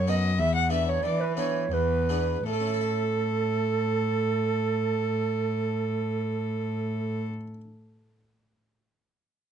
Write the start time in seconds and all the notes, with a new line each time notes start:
Already playing: F#2 C#5
0.07 B3 F#4 A4 D#5
0.39 E2 E5
0.55 F#5
0.70 B3 D4 A4 E5
0.88 C#5
1.03 E3 D5
1.21 B4
1.37 B3 D4 A4 C#5
1.72 E2 B4
2.09 B3 D4 G#4
2.46 A2 A4
2.53 A3
2.60 C#4
2.67 E4
2.74 A4
2.81 E5